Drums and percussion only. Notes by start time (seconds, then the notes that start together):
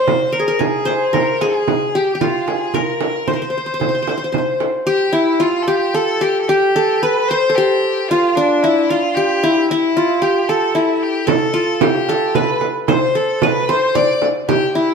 0.07 frame drum
0.60 frame drum
0.87 frame drum
1.14 frame drum
1.41 frame drum
1.68 frame drum
2.21 frame drum
2.48 frame drum
2.74 frame drum
3.01 frame drum
3.28 frame drum
3.81 frame drum
4.07 frame drum
4.34 frame drum
4.60 frame drum
11.28 frame drum
11.81 frame drum
12.09 frame drum
12.35 frame drum
12.61 frame drum
12.88 frame drum
13.42 frame drum
13.69 frame drum
13.95 frame drum
14.22 frame drum
14.49 frame drum